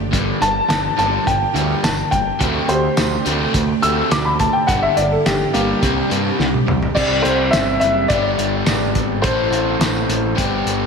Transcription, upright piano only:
0, 0, Header, 1, 2, 480
1, 0, Start_track
1, 0, Tempo, 569260
1, 110, Time_signature, 4, 2, 24, 8
1, 9161, End_track
2, 0, Start_track
2, 0, Title_t, "Upright piano"
2, 0, Program_c, 0, 0
2, 351, Note_on_c, 0, 81, 101
2, 566, Note_off_c, 0, 81, 0
2, 579, Note_on_c, 0, 81, 86
2, 818, Note_off_c, 0, 81, 0
2, 830, Note_on_c, 0, 81, 94
2, 1064, Note_off_c, 0, 81, 0
2, 1070, Note_on_c, 0, 79, 90
2, 1537, Note_off_c, 0, 79, 0
2, 1550, Note_on_c, 0, 81, 74
2, 1781, Note_on_c, 0, 79, 86
2, 1784, Note_off_c, 0, 81, 0
2, 2252, Note_off_c, 0, 79, 0
2, 2258, Note_on_c, 0, 67, 85
2, 2267, Note_on_c, 0, 72, 87
2, 2712, Note_off_c, 0, 67, 0
2, 2735, Note_off_c, 0, 72, 0
2, 3225, Note_on_c, 0, 88, 98
2, 3461, Note_off_c, 0, 88, 0
2, 3472, Note_on_c, 0, 86, 79
2, 3583, Note_off_c, 0, 86, 0
2, 3585, Note_on_c, 0, 83, 86
2, 3700, Note_off_c, 0, 83, 0
2, 3710, Note_on_c, 0, 81, 88
2, 3820, Note_on_c, 0, 79, 84
2, 3822, Note_off_c, 0, 81, 0
2, 3937, Note_off_c, 0, 79, 0
2, 3938, Note_on_c, 0, 78, 96
2, 4056, Note_off_c, 0, 78, 0
2, 4069, Note_on_c, 0, 76, 92
2, 4182, Note_off_c, 0, 76, 0
2, 4187, Note_on_c, 0, 74, 91
2, 4301, Note_off_c, 0, 74, 0
2, 4310, Note_on_c, 0, 69, 88
2, 4422, Note_off_c, 0, 69, 0
2, 4433, Note_on_c, 0, 67, 95
2, 4656, Note_off_c, 0, 67, 0
2, 4666, Note_on_c, 0, 58, 86
2, 4669, Note_on_c, 0, 67, 99
2, 4891, Note_off_c, 0, 58, 0
2, 4903, Note_off_c, 0, 67, 0
2, 5858, Note_on_c, 0, 74, 102
2, 6092, Note_on_c, 0, 72, 91
2, 6111, Note_off_c, 0, 74, 0
2, 6330, Note_on_c, 0, 76, 102
2, 6348, Note_off_c, 0, 72, 0
2, 6563, Note_off_c, 0, 76, 0
2, 6576, Note_on_c, 0, 76, 107
2, 6805, Note_off_c, 0, 76, 0
2, 6816, Note_on_c, 0, 74, 106
2, 7776, Note_on_c, 0, 72, 89
2, 7811, Note_off_c, 0, 74, 0
2, 8708, Note_off_c, 0, 72, 0
2, 9161, End_track
0, 0, End_of_file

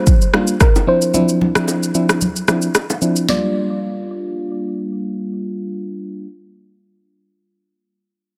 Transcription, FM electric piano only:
0, 0, Header, 1, 2, 480
1, 0, Start_track
1, 0, Tempo, 535714
1, 1024, Time_signature, 4, 2, 24, 8
1, 7505, End_track
2, 0, Start_track
2, 0, Title_t, "FM electric piano"
2, 0, Program_c, 0, 5
2, 302, Note_on_c, 0, 55, 75
2, 303, Note_on_c, 0, 58, 65
2, 306, Note_on_c, 0, 62, 69
2, 307, Note_on_c, 0, 65, 81
2, 489, Note_off_c, 0, 55, 0
2, 490, Note_off_c, 0, 58, 0
2, 491, Note_off_c, 0, 62, 0
2, 492, Note_off_c, 0, 65, 0
2, 779, Note_on_c, 0, 53, 67
2, 781, Note_on_c, 0, 60, 65
2, 782, Note_on_c, 0, 62, 63
2, 784, Note_on_c, 0, 64, 75
2, 1005, Note_off_c, 0, 53, 0
2, 1006, Note_off_c, 0, 60, 0
2, 1006, Note_off_c, 0, 62, 0
2, 1007, Note_off_c, 0, 64, 0
2, 1019, Note_on_c, 0, 53, 86
2, 1020, Note_on_c, 0, 60, 80
2, 1022, Note_on_c, 0, 62, 78
2, 1024, Note_on_c, 0, 64, 97
2, 1362, Note_off_c, 0, 53, 0
2, 1363, Note_off_c, 0, 60, 0
2, 1364, Note_off_c, 0, 62, 0
2, 1365, Note_off_c, 0, 64, 0
2, 1393, Note_on_c, 0, 53, 70
2, 1396, Note_on_c, 0, 60, 69
2, 1397, Note_on_c, 0, 62, 66
2, 1398, Note_on_c, 0, 64, 79
2, 1717, Note_off_c, 0, 53, 0
2, 1718, Note_off_c, 0, 60, 0
2, 1719, Note_off_c, 0, 62, 0
2, 1719, Note_off_c, 0, 64, 0
2, 1742, Note_on_c, 0, 53, 71
2, 1744, Note_on_c, 0, 60, 69
2, 1747, Note_on_c, 0, 62, 71
2, 1747, Note_on_c, 0, 64, 84
2, 1966, Note_off_c, 0, 53, 0
2, 1967, Note_off_c, 0, 60, 0
2, 1968, Note_off_c, 0, 62, 0
2, 1969, Note_off_c, 0, 64, 0
2, 2222, Note_on_c, 0, 53, 72
2, 2225, Note_on_c, 0, 60, 67
2, 2226, Note_on_c, 0, 62, 66
2, 2229, Note_on_c, 0, 64, 78
2, 2409, Note_off_c, 0, 53, 0
2, 2411, Note_off_c, 0, 60, 0
2, 2411, Note_off_c, 0, 62, 0
2, 2413, Note_off_c, 0, 64, 0
2, 2701, Note_on_c, 0, 53, 71
2, 2703, Note_on_c, 0, 60, 63
2, 2705, Note_on_c, 0, 62, 64
2, 2705, Note_on_c, 0, 64, 72
2, 2925, Note_off_c, 0, 53, 0
2, 2926, Note_off_c, 0, 60, 0
2, 2927, Note_off_c, 0, 62, 0
2, 2928, Note_off_c, 0, 64, 0
2, 2941, Note_on_c, 0, 55, 83
2, 2943, Note_on_c, 0, 58, 71
2, 2946, Note_on_c, 0, 62, 72
2, 2950, Note_on_c, 0, 65, 90
2, 5611, Note_off_c, 0, 55, 0
2, 5613, Note_off_c, 0, 58, 0
2, 5616, Note_off_c, 0, 62, 0
2, 5620, Note_off_c, 0, 65, 0
2, 7505, End_track
0, 0, End_of_file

